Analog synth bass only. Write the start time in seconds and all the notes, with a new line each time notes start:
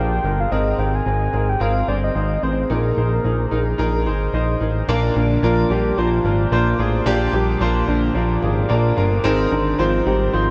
Already playing: A#1
0.24 G1
0.52 G#1
0.79 G#1
1.06 G#1
1.34 G#1
1.61 G#1
1.88 G1
2.15 G#1
2.43 A1
2.70 A#1
2.97 A#1
3.25 A#1
3.52 A#1
3.79 A#1
4.07 G#1
4.34 A#1
4.61 A1
4.88 A#1
5.16 A#1
5.43 A#1
5.70 A#1
5.98 A#1
6.24 G#1
6.52 A#1
6.79 A1
7.06 A#1
7.33 A#1
7.61 A#1
7.88 A#1
8.15 A#1
8.43 G#1
8.70 A#1
8.97 G1
9.24 G#1
9.52 G#1
9.79 G#1
10.07 G#1
10.34 G#1